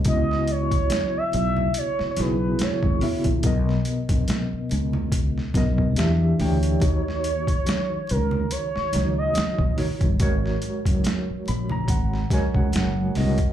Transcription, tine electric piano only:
0.05 C#3 B3 E4 F#4 D#5
2.17 C#3 B3 E4 F#4 G#4
3.01 C#3 B3 E4 F#4 E5
3.44 B2 B3 A#4 D#5
5.55 B2 B3 A#4 D#5
5.96 E3 D4 G4 E5
6.38 E3 D4 G4 G5
6.81 D#3 D#4 F#4 C#5
8.94 D#3 D#4 F#4 C#5
9.77 D#3 D#4 F#4 C#5
10.20 G#3 F#4 A#4 C#5
11.48 B5
11.72 A#5
11.90 F#5
12.31 G#3 F#4 A#4 C#5 G#5
12.56 F#5
12.76 F#5
13.17 G#3 F#4 A#4 D#5

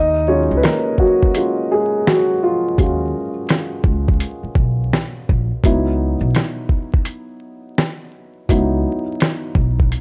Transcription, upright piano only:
Already playing: D#4 D#5
0.28 F#3 G#3 C#4 F4 C#5
0.57 B4
0.64 A#3 A#4
1.00 F#3 F#4
1.36 F#3 G#3 C#4 F4
1.72 G#3 G#4
2.08 F#3 F#4
2.43 F3 F4
2.79 F#3 G#3 C#4 F4
5.64 F#3 B3 D#4 E4
8.49 F#3 B3 D#4 E4

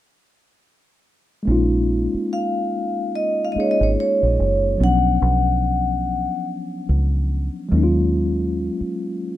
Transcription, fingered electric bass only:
1.47 A#1
2.14 muted fingered electric bass stroke
3.56 muted fingered electric bass stroke
3.81 G#1
4.23 A#1
4.39 F#1
4.80 B1
5.22 B1
6.89 C#2
7.72 D#2
8.81 muted fingered electric bass stroke

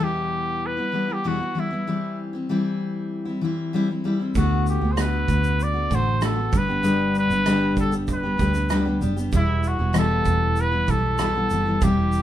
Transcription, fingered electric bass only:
4.35 D2
4.81 D2
5.29 D2
5.90 A1
6.52 G1
7.30 G1
7.77 G1
8.39 D2
9.01 F#1
9.32 E1
9.79 E1
10.25 E1
10.88 B1
11.51 F#1
11.82 E1

